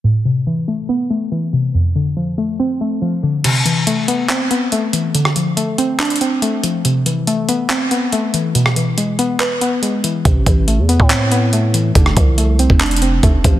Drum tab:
CC |--------------------------------|--------------------------------|x-------------------------------|--------------------------------|
HH |--------------------------------|--------------------------------|x---x---x---x---x---x---x---x---|x---x---x---x---xxxxx---x---x---|
CP |--------------------------------|--------------------------------|----------------x---------------|----------------x---------------|
SD |--------------------------------|--------------------------------|--------------------------------|--r-----------------------------|
BD |--------------------------------|--------------------------------|--------------------------------|--------------------------------|

CC |--------------------------------|--------------------------------|--------------------------------|--------------------------------|
HH |x---x---x---x---x---x---x---x---|x---x---x---x---x---x---x---x---|x---x---x---x---x---x---x---x---|x---x---x---x---xxxxx---x---x---|
CP |----------------x---------------|----------------x---------------|----------------x---------------|----------------x---------------|
SD |--------------------------------|--r-----------------------------|--------------------------------|--r-----------------------------|
BD |--------------------------------|--------------------------------|o---o---------o-----------------|o---o---------o---------o---o---|